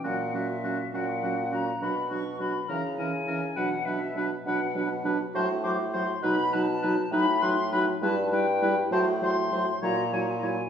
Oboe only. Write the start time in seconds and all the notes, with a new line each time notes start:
0.04 F#4
0.35 F#4
0.64 F#4
0.94 F#4
1.23 F#4
1.52 F#4
1.82 F#4
2.10 F#4
2.39 F#4
2.68 A#4
2.99 A#4
3.27 A#4
3.56 B4
3.86 B4
4.17 B4
4.47 B4
4.76 B4
5.05 B4
5.35 C5
5.64 C5
5.93 C5
6.23 B4
6.53 B4
6.82 B4
7.12 B4
7.41 B4
7.72 B4
8.02 B4
8.32 B4
8.62 B4
8.92 C5
9.23 C5
9.52 C5
9.82 C#5
10.13 C#5
10.43 C#5